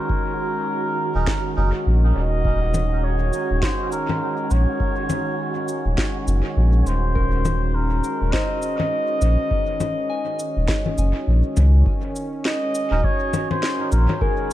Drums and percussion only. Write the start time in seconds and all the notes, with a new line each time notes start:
0.09 kick
1.27 kick, snare
2.45 kick
2.74 low conga, shaker
3.33 shaker
3.62 kick, snare
3.92 shaker
4.09 low conga
4.51 shaker
4.80 kick
5.10 low conga, shaker
5.68 shaker
5.98 kick, snare
6.28 shaker
6.87 shaker
7.16 kick
7.45 low conga, shaker
8.04 shaker
8.33 kick, snare
8.62 shaker
8.80 low conga
9.22 shaker
9.51 kick
9.80 low conga, shaker
10.39 shaker
10.68 kick, snare
10.86 low conga
10.98 shaker
11.57 low conga, shaker
11.86 kick
12.16 shaker
12.45 snare
12.75 shaker
13.04 kick
13.33 low conga, shaker
13.51 low conga
13.63 snare
13.92 shaker
14.09 low conga
14.21 kick